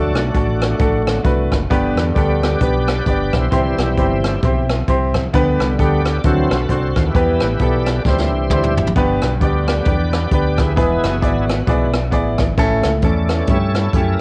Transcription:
Already playing: fingered electric bass D2, tonewheel organ D3 F#3 A3 D4 F#4 A4, grand piano D3 A3 D4 F#4 A4
0.15 fingered electric bass B1, tonewheel organ A3 D4 F#4, cross-stick, closed hi-hat
0.34 fingered electric bass A1, grand piano A3 D4 F#4 A4, kick, closed hi-hat
0.61 cross-stick, closed hi-hat
0.79 fingered electric bass A1, grand piano A3 D4 F#4 A4, kick, closed hi-hat
1.07 tonewheel organ D3 F#3 A3, cross-stick, closed hi-hat
1.24 fingered electric bass C2, grand piano A3 D4 F#4 B4, kick, closed hi-hat
1.52 fingered electric bass F#1, kick, cross-stick, closed hi-hat
1.70 fingered electric bass G1, grand piano G2 B3 D4 G4 B4, tonewheel organ D3 G3 B3, kick, closed hi-hat
1.96 fingered electric bass E2, cross-stick, closed hi-hat
2.15 fingered electric bass D2, grand piano B3 D4 G4 A4, tonewheel organ G4 B4 D5, kick, closed hi-hat
2.42 tonewheel organ D3 G3 B3, cross-stick, closed hi-hat
2.60 fingered electric bass B1, grand piano B3 D4 G4 B4, tonewheel organ G4 B4 D5, kick, closed hi-hat
2.88 cross-stick, closed hi-hat
3.06 fingered electric bass G1, grand piano B3 D4 G4 D5, kick, closed hi-hat
3.33 fingered electric bass B1, tonewheel organ E4 G4 C5, kick, cross-stick, closed hi-hat
3.51 fingered electric bass C2, grand piano C3 C4 E4 G4 C5, tonewheel organ E3 G3 C4, kick, closed hi-hat
3.78 fingered electric bass B1, tonewheel organ C4 E4 G4, cross-stick, closed hi-hat
3.97 fingered electric bass G1, grand piano C4 E4 G4 C5, kick, closed hi-hat
4.23 tonewheel organ E3 G3 C4, cross-stick, closed hi-hat
4.42 fingered electric bass B1, grand piano C4 E4 G4 C5, kick, closed hi-hat
4.69 cross-stick, closed hi-hat
4.88 fingered electric bass C2, grand piano C4 E4 G4 C5, kick, closed hi-hat
5.14 kick, cross-stick, closed hi-hat
5.33 fingered electric bass D2, tonewheel organ D3 G3 B3, grand piano D3 B3 D4 G4 B4, kick, closed hi-hat
5.60 fingered electric bass C2, cross-stick, closed hi-hat
5.79 fingered electric bass D2, grand piano B3 D4 G4 A4, tonewheel organ G4 B4 D5, kick, closed hi-hat
6.05 cross-stick, closed hi-hat
6.19 tonewheel organ D5
6.24 fingered electric bass D2, grand piano D3 C4 D4 F#4 A4, tonewheel organ E3 F#3 C4 F#4 A4 C5, kick, closed hi-hat
6.51 fingered electric bass B1, cross-stick, closed hi-hat
6.60 tonewheel organ B4
6.69 fingered electric bass C2, grand piano C4 D4 F#4 C5, tonewheel organ F#4 A4 C5, kick, closed hi-hat
6.96 fingered electric bass D#2, kick, cross-stick, closed hi-hat
7.06 tonewheel organ E4 G4 B4
7.14 fingered electric bass E2, grand piano E3 B3 E4 G4 B4, tonewheel organ E3 G3 B3, kick, closed hi-hat
7.40 fingered electric bass A1, cross-stick, closed hi-hat
7.59 fingered electric bass B1, grand piano B3 E4 G4 A4, tonewheel organ G4 B4 D5, kick, closed hi-hat
7.86 cross-stick, closed hi-hat
8.01 fingered electric bass D2, grand piano D4, tonewheel organ D5, kick, snare
8.06 grand piano D3 E4 G4 C5, tonewheel organ E3 G3 C4 E4 G4 C5
8.18 snare
8.32 fingered electric bass C2
8.50 fingered electric bass D2, grand piano D4 E4 G4 C5, kick, mid tom
8.63 mid tom
8.77 fingered electric bass F#1, floor tom
8.87 floor tom
8.95 fingered electric bass G1, grand piano G2 B3 D4 G4 B4, kick, closed hi-hat
9.21 fingered electric bass B1, cross-stick, closed hi-hat
9.40 fingered electric bass D2, grand piano B3 D4 G4 D5, tonewheel organ G4 B4 D5, kick, closed hi-hat
9.67 tonewheel organ D3 G3 B3, cross-stick, closed hi-hat
9.85 fingered electric bass E2, grand piano B3 D4 G4 B4, tonewheel organ G4 B4 D5, kick, closed hi-hat
10.13 cross-stick, closed hi-hat
10.31 fingered electric bass D2, grand piano B3 D4 G4 B4, kick, closed hi-hat
10.58 tonewheel organ E4 G#4 B4, kick, cross-stick, closed hi-hat
10.76 fingered electric bass E1, grand piano E3 B3 E4 G#4 B4, tonewheel organ E3 G#3 B3, kick, closed hi-hat
11.03 fingered electric bass F#1, tonewheel organ B3 F#4, cross-stick, closed hi-hat
11.21 fingered electric bass G#1, grand piano B3 E4 G#4 D5, kick, closed hi-hat
11.49 cross-stick, closed hi-hat
11.67 fingered electric bass B1, tonewheel organ E3 G#3 B3, grand piano B3 E4 G#4 D5, kick, closed hi-hat
11.93 cross-stick, closed hi-hat
12.11 fingered electric bass A1, grand piano B3 E4 G#4 D5, kick, closed hi-hat
12.38 fingered electric bass G#1, kick, cross-stick, closed hi-hat
12.57 fingered electric bass A1, grand piano A2 A3 C#4 E4 A4, kick, closed hi-hat
12.83 fingered electric bass C#2, cross-stick, closed hi-hat
13.02 fingered electric bass E2, grand piano A3 C#4 E4 A4, tonewheel organ A4 D5, kick, closed hi-hat
13.29 tonewheel organ E3 A3 C#4, cross-stick, closed hi-hat
13.47 fingered electric bass G2, grand piano A3 C#4 E4 G4, tonewheel organ E4 A4 C#5, kick, closed hi-hat
13.75 cross-stick, closed hi-hat
13.93 fingered electric bass F#2, grand piano A3 C#4 E4 G4, kick, closed hi-hat
14.13 tonewheel organ A#4

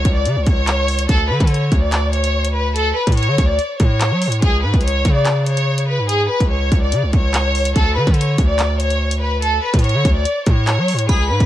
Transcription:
Already playing: violin section C#5, downlifter
0.05 808-style bass C#2, kick, closed hi-hat
0.15 violin section D5
0.25 808-style bass C#3, closed hi-hat
0.36 808-style bass C#2
0.46 808-style bass C#2, violin section C#5, kick, closed hi-hat
0.67 clap, closed hi-hat
0.88 open hi-hat
0.99 closed hi-hat
1.09 808-style bass D2, violin section A4, kick, closed hi-hat
1.30 808-style bass D3, violin section B4
1.40 808-style bass D3, kick, closed hi-hat
1.47 violin section C#5, closed hi-hat
1.54 closed hi-hat
1.72 808-style bass D2, kick, closed hi-hat
1.82 violin section D5
1.92 clap, closed hi-hat
2.13 violin section C#5, closed hi-hat
2.24 closed hi-hat
2.45 closed hi-hat
2.55 violin section B4
2.76 violin section A4, closed hi-hat
2.97 violin section B4
3.07 808-style bass A2, kick, closed hi-hat
3.12 closed hi-hat
3.17 violin section C#5, closed hi-hat
3.23 closed hi-hat
3.28 808-style bass D3
3.38 808-style bass D2, kick, closed hi-hat
3.48 violin section D5
3.59 closed hi-hat
3.80 808-style bass A2, violin section C#5, kick, closed hi-hat
4.01 clap, closed hi-hat
4.11 808-style bass F#3
4.22 open hi-hat
4.27 808-style bass A2
4.32 closed hi-hat
4.42 808-style bass C#2, violin section G#4, kick, closed hi-hat
4.63 808-style bass G#2, violin section B4
4.74 808-style bass C#2, kick, closed hi-hat
4.81 violin section C#5, closed hi-hat
4.88 closed hi-hat
5.05 808-style bass C#3, kick, closed hi-hat
5.15 violin section D5
5.25 clap, closed hi-hat
5.46 violin section C#5, closed hi-hat
5.57 closed hi-hat
5.78 closed hi-hat
5.88 violin section B4
5.99 808-style bass G#2
6.09 violin section G#4, closed hi-hat
6.30 violin section B4
6.40 808-style bass C#2, kick, closed hi-hat
6.51 violin section C#5
6.72 808-style bass C#2, kick, closed hi-hat
6.82 violin section D5
6.92 808-style bass C#3, closed hi-hat
7.03 808-style bass C#2
7.13 808-style bass C#2, violin section C#5, kick, closed hi-hat
7.34 clap, closed hi-hat
7.55 open hi-hat
7.65 closed hi-hat
7.76 808-style bass D2, violin section A4, kick, closed hi-hat
7.96 808-style bass D3, violin section B4
8.07 808-style bass D3, kick, closed hi-hat
8.14 violin section C#5, closed hi-hat
8.21 closed hi-hat
8.38 808-style bass D2, kick, closed hi-hat
8.49 violin section D5
8.59 clap, closed hi-hat
8.80 violin section C#5, closed hi-hat
8.90 closed hi-hat
9.11 closed hi-hat
9.21 violin section B4
9.42 violin section A4, closed hi-hat
9.63 violin section B4
9.74 808-style bass A2, kick, closed hi-hat
9.79 closed hi-hat
9.84 violin section C#5, closed hi-hat
9.89 closed hi-hat
9.94 808-style bass D3
10.05 808-style bass D2, kick, closed hi-hat
10.15 violin section D5
10.25 closed hi-hat
10.46 808-style bass A2, violin section C#5, kick, closed hi-hat
10.67 clap, closed hi-hat
10.78 808-style bass F#3
10.88 open hi-hat
10.93 808-style bass A2
10.99 closed hi-hat
11.09 808-style bass C#2, violin section G#4, synth bell B5, kick, closed hi-hat
11.30 808-style bass G#2, violin section B4
11.40 808-style bass C#2, kick, closed hi-hat

